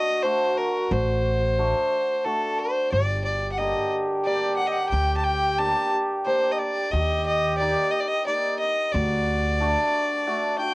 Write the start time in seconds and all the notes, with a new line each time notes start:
Already playing: D3 F#4 D#5
0.23 A3 D4 F#4 C5
0.58 A#4
0.91 A1 C5
1.59 A3 D4 F#4
2.24 A3 D4 F#4 A4
2.59 C5
2.92 G1 G4 D5
3.25 D5
3.52 F#5
3.58 D3 A#3 G4 D#5
4.25 A#3 D4 G4 D5
4.57 F#5
4.67 D#5
4.72 F#5
4.89 D2 G5
5.17 A5
5.23 G5
5.58 A#3 D4 G4 A5
6.26 A#3 D4 G4 C5
6.51 D#5
6.59 D5
6.91 D#2 G4 D#5
7.26 D#5
7.58 A#3 D#4 G4 D5
7.91 D#5
8.00 D5
8.08 D#5
8.26 A#3 D#4 G4 D5
8.60 D#5
8.92 D2 F#4 D5
9.60 A3 D4 F#4
10.27 A3 D4 F#4
10.59 F#4 G5